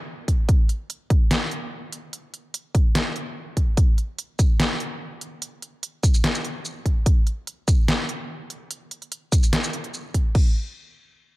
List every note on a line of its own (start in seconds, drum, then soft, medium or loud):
0.28 kick medium
0.28 closed hi-hat medium
0.49 kick loud
0.49 closed hi-hat medium
0.69 closed hi-hat medium
0.90 closed hi-hat medium
1.10 kick loud
1.10 closed hi-hat medium
1.31 snare loud
1.31 closed hi-hat medium
1.51 closed hi-hat medium
1.92 closed hi-hat medium
2.13 closed hi-hat medium
2.34 closed hi-hat soft
2.54 closed hi-hat medium
2.75 kick loud
2.75 closed hi-hat medium
2.95 snare loud
2.95 closed hi-hat medium
3.16 closed hi-hat medium
3.57 kick medium
3.57 closed hi-hat medium
3.77 kick loud
3.77 closed hi-hat medium
3.98 closed hi-hat soft
4.18 closed hi-hat medium
4.39 kick loud
4.39 closed hi-hat soft
4.39 shaker medium
4.60 snare loud
4.60 closed hi-hat medium
4.80 closed hi-hat soft
5.21 closed hi-hat medium
5.42 closed hi-hat medium
5.62 closed hi-hat soft
5.83 closed hi-hat medium
6.03 kick loud
6.03 closed hi-hat soft
6.03 shaker medium
6.14 shaker medium
6.24 snare loud
6.24 closed hi-hat medium
6.35 shaker medium
6.45 closed hi-hat soft
6.65 shaker medium
6.86 kick medium
6.86 closed hi-hat medium
7.06 kick loud
7.06 closed hi-hat medium
7.27 closed hi-hat medium
7.47 closed hi-hat medium
7.68 kick loud
7.68 closed hi-hat medium
7.68 shaker medium
7.88 snare loud
7.88 closed hi-hat medium
8.09 closed hi-hat soft
8.50 closed hi-hat medium
8.71 closed hi-hat medium
8.91 closed hi-hat soft
9.02 closed hi-hat soft
9.12 closed hi-hat medium
9.32 kick loud
9.32 closed hi-hat medium
9.32 shaker medium
9.43 shaker medium
9.53 snare loud
9.53 closed hi-hat medium
9.64 shaker medium
9.73 closed hi-hat medium
9.84 closed hi-hat soft
9.94 shaker medium
10.14 kick medium
10.14 closed hi-hat medium
10.35 kick loud
10.35 crash medium